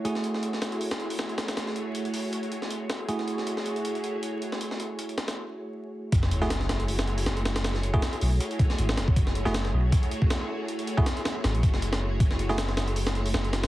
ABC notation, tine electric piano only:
X:1
M:4/4
L:1/16
Q:"Swing 16ths" 1/4=158
K:F#m
V:1 name="Tine electric piano"
[A,EFG]16- | [A,EFG]16 | [A,EFG]16- | [A,EFG]16 |
z3 [A,EFG] z12 | z3 [A,EFG] z12 | z3 [A,EFG] z12 | z3 [A,EFG] z12 |
z3 [A,EFG] z12 |]